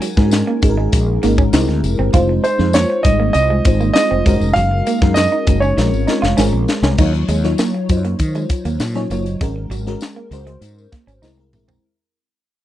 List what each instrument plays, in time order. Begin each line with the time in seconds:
Already playing: fm electric piano G#3 C#4 D#4 F#4 A#4, grand piano G#5
0.02 clean electric guitar F#3, closed hi-hat, tambourine
0.17 fretless electric bass G#2, fm electric piano G#3 C#4 D#4 F#4 A#4, kick, snare
0.31 snare, closed hi-hat, tambourine
0.47 clean electric guitar A#3
0.62 fretless electric bass G#1, fm electric piano G#3 C#4 D#4 F#4 G#4, muted clean electric guitar stroke, kick, closed hi-hat, tambourine
0.69 fm electric piano A#4
0.77 clean electric guitar G#3
0.92 fretless electric bass A#1, muted clean electric guitar stroke, kick, closed hi-hat, tambourine
1.23 fretless electric bass G#1, fm electric piano G#3 C#4 D#4 F#4 A#4, clean electric guitar A#3, snare, closed hi-hat, tambourine
1.38 clean electric guitar C#4, kick, tambourine
1.53 fretless electric bass C2, fm electric piano G#3 C4 E4 G4 A#4, clean electric guitar D#4, snare, closed hi-hat, tambourine
1.68 fretless electric bass D2, muted clean electric guitar stroke, snare
1.84 fretless electric bass F1, closed hi-hat, tambourine
1.99 fretless electric bass G1, clean electric guitar C4
2.13 fretless electric bass F1, fm electric piano G#3 C4 D#4 F4 C5, clean electric guitar F4, kick, closed hi-hat, tambourine
2.29 muted clean electric guitar stroke
2.44 clean electric guitar G#3, grand piano C5, closed hi-hat, tambourine
2.58 fretless electric bass F2, fm electric piano G#3 C4 D#4 F4 C5, snare
2.73 clean electric guitar A#3, grand piano C#5, snare, closed hi-hat, tambourine
2.90 muted clean electric guitar stroke
3.03 fretless electric bass G#1, fm electric piano G3 C4 D#4 F4 C5, grand piano D#5, kick, closed hi-hat, tambourine
3.11 fm electric piano G#3
3.20 clean electric guitar A#3
3.33 fretless electric bass C2, grand piano D#5, closed hi-hat, tambourine
3.50 clean electric guitar G#3
3.65 fretless electric bass G#1, fm electric piano G#3 C4 D#4 F4 C5, muted clean electric guitar stroke, kick, closed hi-hat, tambourine
3.80 clean electric guitar A#3, tambourine
3.94 fm electric piano G#3 C4 D#4 F4 C5, grand piano D#5, muted clean electric guitar stroke, snare, closed hi-hat, tambourine
4.11 fretless electric bass F1, clean electric guitar C4
4.26 fretless electric bass F#1, fm electric piano G#3 C#4 D#4 F#4 A#4, clean electric guitar G#3, kick, closed hi-hat, tambourine
4.41 fretless electric bass F1, tambourine
4.53 fretless electric bass F#1, clean electric guitar F#3, grand piano F5, closed hi-hat, tambourine
4.71 muted clean electric guitar stroke
4.87 clean electric guitar A#3, closed hi-hat, tambourine
5.01 fretless electric bass F#2, fm electric piano G#3 C#4 D#4 F#4 A#4, kick, snare
5.14 grand piano D#5, snare, closed hi-hat, tambourine
5.32 clean electric guitar D#4
5.46 fretless electric bass F#1, fm electric piano G#3 C#4 D#4 F#4 A#4, muted clean electric guitar stroke, kick, closed hi-hat, tambourine
5.60 clean electric guitar C#4, grand piano C#5, tambourine
5.77 fretless electric bass A#1, fm electric piano G#3 C4 C#4 F4 A#4, muted clean electric guitar stroke, snare, tambourine
5.93 fretless electric bass G#1, tambourine
6.07 fm electric piano G#3 C4 C#4 F4 A#4, clean electric guitar D#4, snare, tambourine
6.22 fretless electric bass F1, clean electric guitar F4, snare
6.37 fretless electric bass G#1, fm electric piano G#3 C4 C#4 F4 A#4, clean electric guitar C#4, snare, tambourine
6.52 fretless electric bass A#1, muted clean electric guitar stroke
6.68 snare, tambourine
6.82 fretless electric bass C2, clean electric guitar C#4, snare
6.98 fretless electric bass D#2, fm electric piano F#3 D#4 F4 C#5, clean electric guitar D#4, kick, crash, tambourine
7.13 muted clean electric guitar stroke, closed hi-hat
7.28 fretless electric bass D#2, clean electric guitar G#3, closed hi-hat, tambourine
7.44 fm electric piano F#3 D#4 F4 C#5, snare, closed hi-hat
7.58 clean electric guitar A#3, snare, tambourine
7.74 muted clean electric guitar stroke
7.89 fretless electric bass F#2, fm electric piano F#3 D#4 F4 C5, kick, closed hi-hat, tambourine
7.97 fm electric piano C#5
8.05 clean electric guitar A#3, closed hi-hat
8.19 fretless electric bass D#3, kick, closed hi-hat, tambourine
8.35 clean electric guitar G#3, closed hi-hat, tambourine
8.49 muted clean electric guitar stroke, kick, closed hi-hat, tambourine
8.65 fretless electric bass D#2, clean electric guitar A#3, closed hi-hat, tambourine
8.80 fretless electric bass A#2, muted clean electric guitar stroke, snare, tambourine
8.94 fm electric piano F#3 D#4 F4 C#5, clean electric guitar C#4, snare, closed hi-hat
9.10 fretless electric bass F#1, fm electric piano F#3 D#4 F4 C#5, clean electric guitar A#3, closed hi-hat, tambourine
9.26 closed hi-hat, tambourine
9.41 fretless electric bass G#1, clean electric guitar G#3, fm electric piano G#3 C#4 F#4 A#4, kick, closed hi-hat, tambourine
9.56 muted clean electric guitar stroke
9.70 fretless electric bass G#1, clean electric guitar F#3, closed hi-hat, tambourine
9.87 fm electric piano G#3 C#4 F#4 A#4, snare, closed hi-hat
10.01 snare, tambourine
10.16 clean electric guitar A#3
10.31 fretless electric bass C#2, fm electric piano G#3 C#4 F#4 C5, muted clean electric guitar stroke, closed hi-hat, tambourine
10.47 clean electric guitar G#3, closed hi-hat
10.61 fretless electric bass G#2, muted clean electric guitar stroke, closed hi-hat, tambourine
10.78 tambourine
10.92 clean electric guitar A#3, kick, snare, closed hi-hat, tambourine
11.07 fretless electric bass G#1, clean electric guitar C#4, closed hi-hat, tambourine
11.22 fretless electric bass C2, fm electric piano G#3 C4 E4 A#4, clean electric guitar D#4, snare, tambourine
11.38 fm electric piano G#3 C4 E4 A#4, muted clean electric guitar stroke
11.53 fretless electric bass A#1, fm electric piano G#3 C4 E4 A#4, mid tom, tambourine
11.68 clean electric guitar C4, floor tom, tambourine